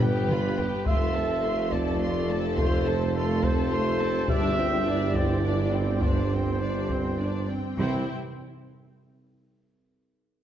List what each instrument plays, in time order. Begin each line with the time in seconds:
Already playing: tuba G1, double bass section G1, cello section G2, trombone section G3 B3, french horn section B4
0.00 viola section B3, violin section G4 G5, trumpet section B4, taiko low-mid
0.29 viola section G3, violin section F4 B5, taiko mid
0.58 viola section B3, violin section G4 G5, taiko low
0.86 tuba F1, double bass section F1, cello section F2, trombone section F3 A3, viola section A3, violin section F4 C6, french horn section A4, trumpet section E5, taiko
1.15 viola section C4, violin section A4 A5
1.44 viola section A3, violin section F4 C6
1.70 viola section C4, french horn section F4, trumpet section D5, violin section A5, taiko
1.74 violin section A4
2.01 viola section A3, violin section F4 C6
2.29 viola section C4, violin section A4 A5
2.57 viola section A3, violin section F4 C6, french horn section A4, trumpet section C5, taiko
2.86 viola section C4, violin section A4 A5
3.15 viola section A3, violin section F4 C6, trumpet section A4
3.42 viola section C4, violin section A4 A5, french horn section A4, trumpet section C5, taiko
3.72 viola section A3, violin section F4 C6
4.00 viola section C4, violin section A4 A5
4.28 tuba G1, double bass section G1, timpani G2, cello section G2, trombone section D3 G3, violin section D4 D5, viola section D4, french horn section G4, trumpet section E5, taiko
4.58 viola section C4, violin section C4 G5, french horn section F4
4.85 violin section D4 D5, viola section D4, french horn section E4
5.14 violin section C4 G5, viola section C4, trumpet section D5, taiko
5.44 violin section D4 D5, viola section D4
5.72 violin section C4 G5, viola section C4
6.00 violin section D4 D5, viola section D4, trumpet section C5, taiko
6.04 french horn section D4
6.30 violin section C4 G5, viola section C4
6.61 violin section D4 D5, viola section D4
6.89 violin section C4 G5, viola section C4, taiko
7.18 violin section D4 D5, viola section D4
7.49 violin section C4 G5, viola section C4
7.79 tuba C2, double bass section C2, cello section C3, trombone section C3 E3, timpani C3, french horn section G3 G4, viola section C4, violin section E4 G5, trumpet section C5, taiko low